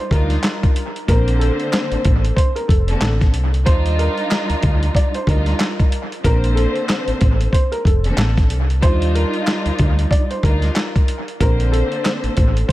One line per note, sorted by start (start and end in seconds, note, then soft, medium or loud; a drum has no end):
0.00 0.10 C5 medium
0.11 0.38 D2 medium
0.11 0.72 G3 medium
0.11 0.72 D4 medium
0.11 0.72 D#4 loud
0.11 0.72 F4 loud
0.11 1.04 A#4 medium
0.11 kick medium
0.11 closed hi-hat medium
0.30 snare soft
0.30 closed hi-hat medium
0.43 snare loud
0.43 clap loud
0.43 closed hi-hat medium
0.63 kick loud
0.63 closed hi-hat soft
0.76 closed hi-hat medium
0.96 closed hi-hat soft
1.08 1.51 A#1 loud
1.08 2.71 D3 loud
1.08 2.72 A#3 medium
1.08 2.72 C4 loud
1.08 1.37 A#4 medium
1.08 2.72 C5 loud
1.08 kick loud
1.08 closed hi-hat medium
1.28 closed hi-hat medium
1.39 2.32 A4 medium
1.39 closed hi-hat medium
1.60 closed hi-hat soft
1.73 snare loud
1.73 clap medium
1.73 closed hi-hat medium
1.92 1.97 A1 soft
1.92 closed hi-hat soft
2.05 2.32 A1 medium
2.05 kick loud
2.05 closed hi-hat medium
2.25 closed hi-hat medium
2.36 2.54 C5 medium
2.36 kick medium
2.36 closed hi-hat medium
2.56 2.68 A#4 medium
2.56 closed hi-hat medium
2.68 2.96 F1 medium
2.68 3.17 A4 medium
2.68 kick medium
2.68 closed hi-hat medium
2.88 3.31 D3 loud
2.88 3.31 A#3 medium
2.88 3.31 C4 medium
2.88 3.31 A4 loud
2.88 closed hi-hat medium
3.01 3.35 A1 loud
3.01 snare loud
3.01 clap loud
3.01 closed hi-hat medium
3.21 kick loud
3.21 snare soft
3.21 closed hi-hat soft
3.34 3.68 C2 loud
3.34 closed hi-hat medium
3.54 closed hi-hat medium
3.65 4.09 D#2 loud
3.65 5.17 G3 loud
3.65 5.17 D4 medium
3.65 5.16 D#4 loud
3.65 5.17 F4 loud
3.65 3.95 C5 loud
3.65 kick loud
3.65 closed hi-hat loud
3.86 closed hi-hat medium
3.99 4.91 A#4 medium
3.99 closed hi-hat medium
4.17 closed hi-hat soft
4.31 snare loud
4.31 clap medium
4.31 closed hi-hat medium
4.50 4.55 D2 soft
4.50 closed hi-hat soft
4.63 4.90 D2 medium
4.63 kick loud
4.63 closed hi-hat medium
4.83 closed hi-hat medium
4.95 5.12 D5 medium
4.95 kick medium
4.95 closed hi-hat medium
5.14 5.27 C5 medium
5.14 closed hi-hat medium
5.27 5.54 D2 medium
5.27 5.88 G3 medium
5.27 5.88 D4 medium
5.27 5.88 D#4 loud
5.27 5.88 F4 loud
5.27 6.20 A#4 medium
5.27 kick medium
5.27 closed hi-hat medium
5.46 snare soft
5.46 closed hi-hat medium
5.59 snare loud
5.59 clap loud
5.59 closed hi-hat medium
5.80 kick loud
5.80 closed hi-hat soft
5.92 closed hi-hat medium
6.12 closed hi-hat medium
6.23 6.67 A#1 loud
6.23 7.87 D3 loud
6.23 7.88 A#3 medium
6.23 7.88 C4 loud
6.23 6.54 A#4 loud
6.23 7.88 C5 loud
6.23 kick loud
6.23 closed hi-hat medium
6.44 closed hi-hat medium
6.55 7.48 A4 medium
6.55 closed hi-hat medium
6.76 closed hi-hat soft
6.89 snare loud
6.89 clap medium
6.89 closed hi-hat medium
7.08 7.13 A1 soft
7.08 closed hi-hat soft
7.21 7.48 A1 medium
7.21 kick loud
7.21 closed hi-hat medium
7.41 closed hi-hat medium
7.53 7.70 C5 medium
7.53 kick medium
7.53 closed hi-hat medium
7.72 7.84 A#4 medium
7.72 closed hi-hat soft
7.85 8.12 F1 medium
7.85 8.34 A4 medium
7.85 kick medium
7.85 closed hi-hat medium
8.04 8.47 D3 medium
8.04 8.47 A#3 medium
8.04 8.47 C4 medium
8.04 8.48 A4 loud
8.04 closed hi-hat soft
8.17 8.52 A1 loud
8.17 snare loud
8.17 clap loud
8.17 closed hi-hat medium
8.37 kick loud
8.37 snare soft
8.37 closed hi-hat soft
8.50 8.84 C2 loud
8.50 closed hi-hat medium
8.70 closed hi-hat soft
8.81 9.25 D#2 loud
8.81 10.33 G3 loud
8.81 10.33 D4 medium
8.81 10.32 D#4 loud
8.81 10.33 F4 loud
8.81 9.12 C5 loud
8.81 kick loud
8.81 closed hi-hat loud
9.02 closed hi-hat medium
9.15 10.08 A#4 medium
9.15 closed hi-hat medium
9.34 closed hi-hat soft
9.47 snare loud
9.47 clap medium
9.47 closed hi-hat medium
9.66 9.71 D2 soft
9.66 closed hi-hat soft
9.79 10.06 D2 medium
9.79 kick loud
9.79 closed hi-hat medium
9.99 closed hi-hat medium
10.11 10.28 D5 medium
10.11 kick medium
10.11 closed hi-hat medium
10.31 10.42 C5 medium
10.31 closed hi-hat soft
10.43 10.70 D2 medium
10.43 11.04 G3 medium
10.43 11.04 D4 medium
10.43 11.04 D#4 loud
10.43 11.05 F4 loud
10.43 11.36 A#4 medium
10.43 kick medium
10.43 closed hi-hat medium
10.62 snare soft
10.62 closed hi-hat soft
10.75 snare loud
10.75 clap loud
10.75 closed hi-hat medium
10.96 kick loud
10.96 closed hi-hat soft
11.08 closed hi-hat medium
11.28 closed hi-hat soft
11.40 11.83 A#1 loud
11.40 12.72 D3 loud
11.40 12.72 A#3 loud
11.40 12.72 C4 loud
11.40 11.70 A#4 medium
11.40 12.72 C5 loud
11.40 kick loud
11.40 closed hi-hat loud
11.60 closed hi-hat medium
11.72 12.65 A4 medium
11.72 closed hi-hat medium
11.92 closed hi-hat soft
12.05 snare loud
12.05 clap medium
12.05 closed hi-hat medium
12.24 12.29 A1 soft
12.24 closed hi-hat medium
12.37 12.64 A1 loud
12.37 kick loud
12.37 closed hi-hat medium
12.57 closed hi-hat medium
12.68 12.72 C5 medium
12.68 kick medium